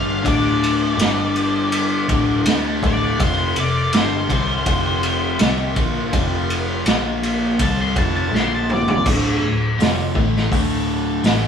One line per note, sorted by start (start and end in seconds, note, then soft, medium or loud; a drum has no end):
0.00 0.22 G1 medium
0.00 0.22 G2 medium
0.00 0.22 D3 medium
0.00 0.23 G3 medium
0.00 0.25 F5 medium
0.22 0.94 D1 loud
0.22 0.95 D2 medium
0.22 0.96 A2 medium
0.22 0.95 D3 loud
0.22 kick loud
0.22 ride medium
0.28 2.44 D5 medium
0.63 ride medium
0.95 2.05 G1 loud
0.95 2.06 G2 loud
0.95 2.07 D3 loud
0.95 2.07 G3 loud
0.95 ride loud
1.01 snare loud
1.36 ride medium
1.72 ride loud
2.08 2.43 D1 medium
2.08 2.45 D2 medium
2.08 2.45 A2 loud
2.08 2.45 D3 loud
2.08 kick loud
2.08 ride medium
2.45 2.80 D2 medium
2.45 2.82 D3 medium
2.45 2.82 A3 loud
2.45 2.82 D4 loud
2.45 snare loud
2.45 ride loud
2.82 3.17 D1 medium
2.82 3.19 D2 medium
2.82 3.19 A2 medium
2.82 3.19 D3 medium
2.82 kick loud
2.82 ride medium
2.87 3.20 D5 loud
3.19 3.53 F1 loud
3.19 3.55 F2 medium
3.19 3.56 C3 loud
3.19 3.56 F3 loud
3.19 3.57 C5 medium
3.19 kick loud
3.19 ride loud
3.56 3.91 F1 medium
3.56 3.86 F2 medium
3.56 3.86 C3 medium
3.56 3.94 D5 medium
3.56 ride medium
3.93 4.28 G1 loud
3.93 4.29 G2 loud
3.93 4.29 D3 loud
3.93 4.29 G3 loud
3.93 snare loud
3.93 ride loud
3.97 5.38 C5 loud
4.29 4.64 C2 loud
4.29 4.65 C3 medium
4.29 4.66 G3 medium
4.29 4.66 C4 loud
4.29 kick loud
4.29 ride medium
4.66 5.36 F1 loud
4.66 5.39 F2 medium
4.66 5.38 C3 loud
4.66 5.39 F3 loud
4.66 kick loud
4.66 ride medium
5.03 ride medium
5.39 5.74 C2 medium
5.39 5.75 C3 medium
5.39 5.75 G3 medium
5.39 5.76 C4 loud
5.39 snare loud
5.39 ride medium
5.76 6.11 A#1 medium
5.76 6.12 A#2 medium
5.76 6.12 F3 medium
5.76 6.13 A#3 medium
5.76 kick loud
5.76 ride medium
6.12 6.83 F1 loud
6.12 6.85 F2 medium
6.12 6.85 C3 medium
6.12 6.85 F3 medium
6.12 kick loud
6.12 ride medium
6.50 ride medium
6.86 7.56 A#1 loud
6.86 7.59 A#2 medium
6.86 7.59 F3 medium
6.86 7.59 A#3 loud
6.86 snare loud
6.86 ride loud
7.23 ride medium
7.59 7.93 C2 loud
7.59 7.95 C3 medium
7.59 7.95 G3 loud
7.59 7.96 C4 loud
7.59 7.81 A5 loud
7.59 kick loud
7.59 ride loud
7.81 7.98 C6 medium
7.95 8.30 F1 medium
7.95 8.33 F2 medium
7.95 8.34 C3 medium
7.95 8.34 F3 loud
7.95 8.15 A5 loud
7.95 kick loud
7.95 ride medium
8.16 8.33 A5 medium
8.31 9.01 A#1 medium
8.31 9.05 A#2 medium
8.31 9.05 F3 medium
8.31 9.05 A#3 medium
8.31 snare medium
8.36 8.52 C6 medium
8.55 8.71 A5 medium
8.70 9.07 D5 loud
8.70 mid tom medium
8.88 floor tom loud
9.05 9.40 D1 loud
9.05 9.41 D2 medium
9.05 9.41 A2 loud
9.05 9.42 D3 loud
9.05 kick loud
9.05 crash loud
9.42 9.76 D1 medium
9.42 9.72 D2 medium
9.42 9.71 A2 medium
9.78 10.13 F1 loud
9.78 10.14 F2 loud
9.78 10.14 C3 medium
9.78 10.15 F3 loud
9.78 snare loud
9.78 open hi-hat medium
10.14 10.49 A1 loud
10.14 10.50 A2 medium
10.14 10.50 E3 loud
10.14 10.50 A3 loud
10.14 kick loud
10.36 snare soft
10.52 11.20 D1 loud
10.52 11.23 D2 loud
10.52 11.23 A2 loud
10.52 11.24 D3 loud
10.52 kick loud
10.52 open hi-hat medium
11.24 11.48 A1 medium
11.24 11.48 A2 medium
11.24 11.48 E3 medium
11.24 11.48 A3 medium
11.24 snare loud
11.24 open hi-hat medium